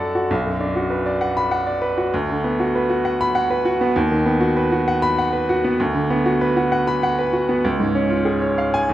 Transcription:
Already playing: F#2 F#3 D4 F#4 D5 F#5 A5
0.00 A4
0.15 F#4
0.31 B1
0.46 F#2
0.60 D4
0.76 F#4
0.90 B4
1.06 D5
1.21 F#5
1.37 B5
1.51 F#5
1.67 D5
1.82 B4
1.98 F#4
2.14 D2
2.30 D3
2.44 B3
2.60 F#4
2.75 B4
2.90 F#4
3.05 F#5
3.21 B5
3.35 F#5
3.50 B4
3.65 F#4
3.81 B3
3.96 D#2
4.11 D#3
4.26 B3
4.41 F#4
4.57 B4
4.72 F#4
4.88 F#5
5.02 B5
5.18 F#5
5.33 B4
5.49 F#4
5.64 B3
5.80 D2
5.95 D3
6.10 B3
6.26 F#4
6.41 B4
6.57 F#4
6.72 F#5
6.87 B5
7.03 F#5
7.19 B4
7.33 F#4
7.49 B3
7.65 C#2
7.80 G#2
7.95 C#4
8.10 F4
8.25 G#4
8.42 C#5
8.58 F5
8.74 G#5
8.89 D#2

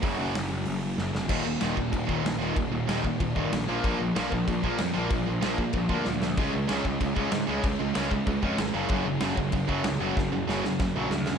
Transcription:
0.03 F#1 F#2 C#3 F#3, kick, open hi-hat
0.18 F#1 F#2 C#3 F#3
0.35 F#1, snare, open hi-hat
0.52 F#1
0.66 F#1, open hi-hat
0.98 F#1, snare
1.13 F1, snare
1.28 D#1 D#2 A#2 D#3, kick, crash
1.45 D#1 D#2 A#2
1.60 D#1 D#2 A#2 D#3, snare, crash
1.77 D#1 D#2 A#2, kick
1.92 D#1 D#2 A#2 D#3, kick, crash
2.08 D#1 D#2 A#2 D#3, kick
2.23 A#1 D#2 A#2, snare, crash
2.39 D#1 D#2 A#2 D#3
2.56 D#1 D#2 A#2 D#3, kick, crash
2.71 D#1 D#2 A#2
2.88 D#1 D#2 A#2 D#3, snare, crash
3.03 D#2 A#2, kick
3.20 D#1 D#2 A#2 D#3, kick, crash
3.34 G1 D#2 A#2 D#3, kick
3.51 A#1 D#2 A#2, snare, crash
3.67 A#1 A#2 F3 A#3
3.84 A#1 A#2 F3 A#3, kick, crash
4.00 A#1 A#2 F3
4.16 A#1 A#2 F3 A#3, snare, crash
4.30 A#1 A#2 F3 A#3, kick
4.48 A#1 A#2 F3, kick, crash
4.64 A#1 A#2 F3 A#3, kick
4.78 F2 A#2 F3, snare, crash
4.96 A#1 A#2 F3 A#3
5.10 A#1 A#2 F3, kick, crash
5.28 A#1 A#2 F3
5.42 A#1 A#2 F3 A#3, snare, crash
5.56 A#2 F3 A#3, kick
5.73 A#1 A#2 F3, kick, crash
5.89 D2 A#2 F3 A#3, kick
6.05 D2 A#2 F3, snare
6.21 A#2 F3, snare
6.37 C#2 C#3 G#3 C#4, kick, crash
6.53 C#2 C#3 G#3
6.69 C#2 C#3 G#3 C#4, snare, crash
6.85 C#2 C#3 G#3, kick
7.01 C#2 C#3 G#3 C#4, kick, crash
7.16 C#2 C#3 G#3 C#4, kick
7.32 G#2 C#3 G#3, snare, crash
7.48 C#2 C#3 G#3 C#4
7.64 C#2 C#3 G#3 C#4, kick, crash
7.81 C#2 C#3 G#3
7.95 C#2 C#3 G#3 C#4, snare, crash
8.11 C#3 G#3, kick
8.27 C#2 C#3 G#3 C#4, kick, crash
8.43 F2 C#3 G#3 C#4, kick
8.58 G#1 C#3 G#3, snare, crash
8.75 F#1 F#2 C#3 F#3
8.89 F#1 F#2 C#3 F#3, kick, crash
9.06 F#1 F#2 C#3
9.20 F#1 F#2 C#3 F#3, snare, crash
9.36 F#1 F#2 C#3 F#3, kick
9.52 F#1 F#2 C#3, kick, crash
9.68 F#1 F#2 C#3 F#3, kick
9.84 C#2 F#2 C#3, snare, crash
9.99 F#1 F#2 C#3 F#3
10.16 F#1 F#2 C#3, kick, snare
10.31 F#1 F#2 C#3
10.47 F#1 F#2 C#3 F#3, snare
10.64 F#2 C#3 F#3, snare
10.79 F#1 F#2 C#3, kick, snare
10.96 A#1 F#2 C#3 F#3
11.10 D2 F#2 C#3, snare
11.26 F#2 C#3, snare

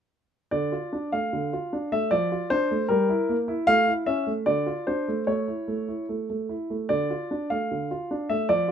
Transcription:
0.51 D3 D5
0.72 F4
0.93 D4
1.12 A3 F5
1.33 D3
1.53 F4
1.73 D4
1.92 A3 E5
2.11 F3 D5
2.32 F4
2.50 D4 C5
2.71 A3
2.89 G3 A#4
3.09 E4
3.29 A#3
3.48 E4
3.67 A3 F5
3.87 E4
4.06 C#4 E5
4.27 A3
4.46 D3 D5
4.66 F4
4.87 D4 C5
5.08 A3
5.27 A3 C#5
5.48 E4
5.68 A3
5.88 E4
6.09 A3
6.30 A3
6.49 E4
6.70 A3
6.89 D3 D5
7.10 F4
7.31 D4
7.50 A3 F5
7.71 D3
7.91 F4
8.11 D4
8.29 A3 E5
8.49 F3 D5
8.68 F4

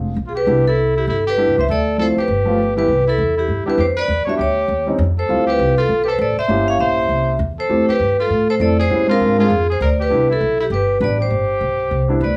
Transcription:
Already playing: F1 D4 F4
0.16 B1
0.27 F4 G#4
0.35 G4 B4
0.46 C2 G3 B3 D4 E4
0.67 E4 A4
0.96 E4 G4
1.07 G1 E4 A4
1.27 G4 B4
1.37 G3 B3 D4 E4
1.47 C2
1.58 C#2 C5 E5
1.68 D2 A4 D5
1.98 F3 A3 C4 E4 A4
2.02 C5
2.17 G4 B4, muted upright bass stroke
2.28 G1
2.45 F3 A3 B3 F4
2.76 C2 E3 G3 B3 E4 G4 B4
2.88 C2
3.07 E4 A4
3.18 E2
3.38 E4 G4
3.48 G2
3.66 G3 B3 D4 E4 G4, muted upright bass stroke
3.70 B4
3.78 F2 G4 C5
3.97 B4 D5
4.08 E2
4.25 G3 B3 D4 F#4 C#5, muted upright bass stroke
4.29 E5
4.38 D2 G4 C#5
4.68 D#2
4.86 G3 C4 C#4 D#4
4.98 F2
5.18 A4 C5
5.28 D2 G3 C4 E4 F4
5.47 G4 B4
5.59 C2
5.78 F4 A4
5.89 B1
6.04 G4 A4 B4
6.10 C5
6.18 A1 A4 D5
6.37 C5 E5, muted upright bass stroke
6.48 G1 A#3 C#4 E4 G4
6.68 C#5 F5
6.79 A#1 C5 E5
7.09 C2
7.39 E2
7.59 A4 C5
7.69 F2 A3 C4 E4 G4
7.88 G4 B4, muted upright bass stroke
8.00 G2
8.20 F4 A4
8.30 A2
8.50 A4 C5
8.59 F2 A3 C4 E4 A4 D5
8.79 G#4 C5
8.90 A#2 G3 B3 C#4 E4
9.07 G#3 C4 D4 F4
9.11 A#4
9.20 G#2
9.37 G#3 C4 D4 F4 G#4
9.50 F2
9.70 G#4 C5
9.81 D2 A#4 D5
9.99 G4 B4
10.09 C2 G3 B3 D4 E4
10.30 E4 A4
10.41 B1
10.60 E4 G4
10.70 G1 G4 B4
11.00 A1 G3 B3 D4 G4 B4
11.04 D5
11.20 G4 C5
11.30 G1
11.61 B1
11.91 C2
12.08 G3 B3 D4 E4
12.21 D2 B4 D5

